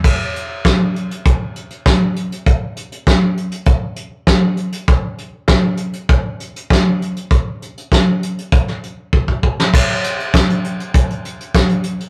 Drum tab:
CC |x---------------|----------------|----------------|----------------|
HH |--x-x-xxx-xxx-xx|x-xxx-xxx-x-x-xx|x-x-x-xxx-xxx-xx|x-xxx-xxx-x-----|
SD |----o-------o---|----o-------o---|----o-------o---|----o----o-----o|
BD |o---o---o---o---|o---o---o---o---|o---o---o---o---|o---o---o---ooo-|

CC |x---------------|
HH |--xxxxxxxxxxxxxx|
SD |----o-------o---|
BD |o---o---o---o---|